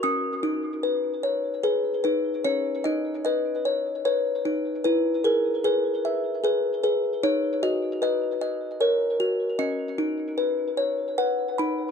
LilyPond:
\new Staff \with { instrumentName = "Music box" } { \time 3/4 \key b \major \tempo 4 = 75 << { dis'''2 gis'8 b'8 | cis''8 dis''8 dis''4 cis''4 | b'8 ais'8 gis'4 gis'8 b'8 | cis''8 dis''8 dis''8 r8 cis''4 |
dis''2 fis''8 b''8 | } \\ { cis'8 dis'8 b'8 cis''8 b'8 dis'8 | cis'8 dis'8 b'8 cis''8 b'8 dis'8 | e'8 gis'8 b'8 e''8 b'8 gis'8 | dis'8 fis'8 b'8 dis''8 ais'8 fis'8 |
cis'8 dis'8 b'8 cis''8 b'8 dis'8 | } >> }